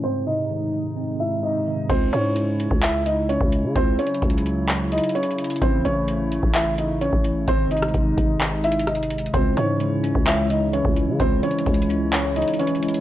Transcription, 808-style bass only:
X:1
M:4/4
L:1/16
Q:1/4=129
K:C#m
V:1 name="808-style bass" clef=bass
z16 | C,,2 G,,4- G,, C,,6 C,,2 C, | C,,2 z2 C,,6- C,, z4 z | A,,,2 A,,,4- A,,, A,,,6 A,,,3 |
G,,,4 G,,,2 G,,,8- G,,,2 | C,,2 G,,4- G,, C,,6 C,,2 C, | C,,2 z2 C,,6- C,, z4 z |]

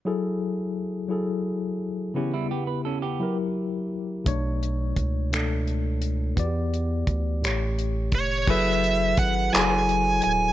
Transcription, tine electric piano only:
X:1
M:6/8
L:1/8
Q:3/8=57
K:F#m
V:1 name="Tine electric piano"
[F,EGA]2 z [F,EGA]2 z | [C,B,E=G]2 z [F,EG^A]2 z | [B,,A,Dc]2 z [B,,A,DA]2 z | [E,B,F=Gd]2 z [A,,A,Gc]2 z |
[F,EGAB]2 z [F,EGAc]2 z |]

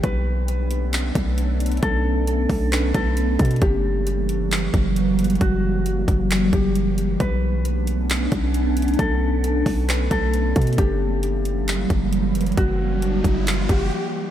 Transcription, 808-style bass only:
X:1
M:4/4
L:1/8
Q:1/4=134
K:Bm
V:1 name="808-style bass" clef=bass
B,,,4- B,,, B,,,3 | B,,,3 B,,,2 B,,,2 B,, | F,,,4- F,,, F,,,3 | F,,,3 F,,,2 F,,,3 |
B,,,4- B,,, B,,,3 | B,,,3 B,,,2 B,,,2 B,, | F,,,4- F,,, F,,,3 | F,,,3 F,,,2 F,,, z2 |]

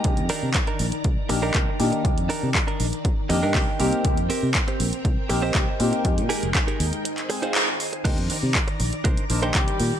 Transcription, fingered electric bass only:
X:1
M:4/4
L:1/16
Q:1/4=120
K:Cm
V:1 name="Fingered electric bass" clef=bass
C,, F,, z C, z2 B,,, z C,, z B,,,2 C,, z B,, z | C,, F,, z C, z2 B,,, z3 F,, G,, C,, z C,, z | C,, F,, z C, z2 B,,, z C,, z B,,,2 z2 B,, z | F,, B,, z F,,, z2 E,, z8 z |
C,, F,, z C, z2 B,,, z C,, z B,,,2 C,, z B,, z |]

